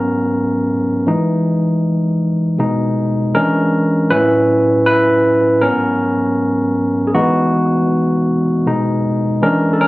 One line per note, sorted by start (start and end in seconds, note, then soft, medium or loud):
0.00 0.64 G#2 medium
0.00 0.65 F#3 medium
0.00 0.65 B3 medium
0.00 0.11 C#4 medium
0.00 0.10 A#4 medium
1.07 1.59 E3 medium
1.07 1.59 G#3 soft
1.07 1.59 D#4 medium
2.58 3.30 B2 medium
2.58 3.31 G#3 soft
2.58 3.31 D#4 medium
3.35 4.07 E3 soft
3.35 4.07 G#3 soft
3.35 4.07 C#4 medium
3.35 4.07 D4 medium
3.35 4.13 A#4 medium
4.10 5.58 A2 medium
4.10 5.58 F#3 soft
4.10 5.59 C#4 medium
4.10 4.83 E4 medium
4.10 4.85 B4 medium
4.86 5.59 E4 medium
4.86 5.64 B4 medium
5.61 6.14 G#2 medium
5.61 6.14 F#3 soft
5.61 6.15 B3 medium
5.61 7.04 C#4 medium
5.61 7.12 A#4 medium
7.07 7.14 G#4 medium
7.15 7.67 E3 medium
7.15 7.67 G#3 medium
7.15 8.25 B3 medium
7.15 7.67 D#4 medium
7.15 8.24 F#4 medium
8.66 9.38 B2 medium
8.66 9.38 G#3 soft
8.66 9.39 D#4 medium
9.42 9.88 E3 medium
9.42 9.88 G#3 soft
9.42 9.72 C#4 medium
9.42 9.88 D4 medium
9.42 9.75 A#4 medium
9.73 9.79 A4 medium
9.81 9.88 C#4 medium
9.81 9.88 A#4 medium